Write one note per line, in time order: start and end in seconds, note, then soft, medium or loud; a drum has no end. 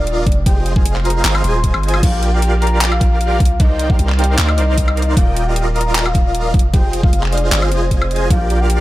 0.00 0.25 D#1 loud
0.00 0.26 F4 medium
0.00 0.26 A#4 medium
0.00 0.26 D5 medium
0.00 0.39 D5 loud
0.00 0.26 D#5 medium
0.00 0.26 F5 loud
0.07 closed hi-hat medium
0.27 0.84 F1 loud
0.27 kick loud
0.27 closed hi-hat soft
0.32 closed hi-hat medium
0.46 0.74 F4 medium
0.46 0.74 G#4 medium
0.46 0.74 C5 medium
0.46 0.74 D#5 medium
0.46 0.66 G5 loud
0.46 0.74 G5 loud
0.46 kick loud
0.46 closed hi-hat medium
0.66 closed hi-hat medium
0.76 1.42 F4 medium
0.76 1.42 G#4 medium
0.76 1.42 C5 medium
0.76 1.42 D#5 medium
0.76 1.42 F5 loud
0.76 0.95 G#5 loud
0.76 kick loud
0.85 1.24 F1 medium
0.85 closed hi-hat medium
0.96 clap soft
1.05 1.36 A#5 loud
1.05 closed hi-hat soft
1.10 closed hi-hat medium
1.25 1.43 G1 medium
1.25 clap loud
1.25 closed hi-hat medium
1.35 1.96 C6 loud
1.35 high woodblock medium
1.44 1.73 D#1 loud
1.44 2.01 F4 medium
1.44 2.01 G#4 medium
1.44 2.01 C5 medium
1.44 2.01 D#5 medium
1.44 2.01 G#5 loud
1.44 closed hi-hat medium
1.64 kick medium
1.64 closed hi-hat medium
1.74 2.02 G1 medium
1.74 high woodblock medium
1.83 closed hi-hat soft
1.88 closed hi-hat medium
1.94 high woodblock medium
2.03 3.42 A#1 loud
2.03 2.31 F4 medium
2.03 2.31 G4 medium
2.03 2.31 A#4 medium
2.03 2.31 D5 medium
2.03 2.34 F5 loud
2.03 2.31 G5 loud
2.03 kick loud
2.03 closed hi-hat medium
2.03 crash medium
2.23 closed hi-hat medium
2.33 3.39 F4 loud
2.33 3.39 G4 medium
2.33 3.39 A#4 medium
2.33 3.39 D5 medium
2.33 3.39 F5 loud
2.33 2.52 G5 loud
2.42 closed hi-hat medium
2.62 2.81 A#5 loud
2.62 closed hi-hat medium
2.67 closed hi-hat medium
2.81 clap loud
2.81 closed hi-hat medium
2.92 3.61 F5 loud
2.92 high woodblock medium
3.01 kick loud
3.01 closed hi-hat medium
3.21 closed hi-hat medium
3.40 3.98 C2 loud
3.40 kick loud
3.40 closed hi-hat soft
3.45 closed hi-hat medium
3.60 3.87 D#4 medium
3.60 3.87 A#4 medium
3.60 3.87 C5 medium
3.60 3.87 D5 medium
3.60 3.91 D#5 loud
3.60 3.87 G5 loud
3.60 kick loud
3.60 closed hi-hat medium
3.79 closed hi-hat medium
3.90 5.15 D#4 loud
3.90 5.15 A#4 medium
3.90 5.15 C5 medium
3.90 5.15 D5 medium
3.90 5.15 F5 loud
3.90 4.09 G5 loud
3.90 kick loud
3.99 4.37 C2 medium
3.99 closed hi-hat medium
4.09 clap soft
4.19 4.38 G5 loud
4.19 closed hi-hat medium
4.24 closed hi-hat medium
4.38 4.60 D2 medium
4.38 clap loud
4.38 closed hi-hat medium
4.49 5.09 D#5 loud
4.49 high woodblock medium
4.58 5.16 C2 medium
4.58 closed hi-hat medium
4.78 kick medium
4.78 closed hi-hat medium
4.88 high woodblock medium
4.97 closed hi-hat soft
5.02 closed hi-hat medium
5.17 6.56 D#1 loud
5.17 5.44 F4 medium
5.17 5.44 A#4 medium
5.17 5.44 D5 medium
5.17 5.44 D#5 medium
5.17 5.48 F5 loud
5.17 5.44 G5 loud
5.17 kick loud
5.17 closed hi-hat medium
5.37 closed hi-hat medium
5.47 6.53 F4 loud
5.47 6.53 A#4 medium
5.47 6.53 D5 medium
5.47 6.53 D#5 medium
5.47 6.53 F5 loud
5.47 5.66 G5 loud
5.56 closed hi-hat medium
5.76 6.07 A#5 loud
5.76 closed hi-hat medium
5.81 closed hi-hat medium
5.95 clap loud
5.95 closed hi-hat medium
6.05 6.66 F5 loud
6.05 high woodblock medium
6.15 kick loud
6.15 closed hi-hat medium
6.35 closed hi-hat medium
6.54 7.12 F1 loud
6.54 kick loud
6.54 closed hi-hat soft
6.59 closed hi-hat medium
6.74 7.01 F4 loud
6.74 7.01 G#4 medium
6.74 7.01 C5 medium
6.74 7.01 D#5 medium
6.74 7.01 G5 loud
6.74 6.93 G5 loud
6.74 kick loud
6.74 closed hi-hat medium
6.93 closed hi-hat medium
7.03 7.70 F4 medium
7.03 7.70 G#4 medium
7.03 7.70 C5 medium
7.03 7.70 D#5 medium
7.03 7.23 F5 loud
7.03 7.70 F5 loud
7.03 kick loud
7.13 7.51 F1 medium
7.13 closed hi-hat medium
7.23 clap soft
7.32 7.64 D5 loud
7.32 closed hi-hat soft
7.38 closed hi-hat medium
7.52 7.73 G1 medium
7.52 clap loud
7.52 closed hi-hat medium
7.62 8.23 C5 loud
7.62 high woodblock medium
7.71 8.29 F1 medium
7.71 8.28 F4 medium
7.71 8.28 G#4 medium
7.71 8.28 C5 medium
7.71 8.28 D#5 medium
7.71 8.28 G#5 loud
7.71 closed hi-hat medium
7.91 kick medium
7.91 closed hi-hat medium
8.02 high woodblock medium
8.11 closed hi-hat soft
8.16 closed hi-hat medium
8.30 8.80 A#1 loud
8.30 8.58 F4 medium
8.30 8.58 G4 medium
8.30 8.58 A#4 medium
8.30 8.58 D5 medium
8.30 8.62 F5 loud
8.30 8.58 G5 loud
8.30 kick loud
8.30 closed hi-hat medium
8.50 closed hi-hat medium
8.60 8.80 F4 loud
8.60 8.80 G4 medium
8.60 8.80 A#4 medium
8.60 8.80 D5 medium
8.60 8.80 F5 loud
8.60 8.80 G5 loud
8.70 closed hi-hat medium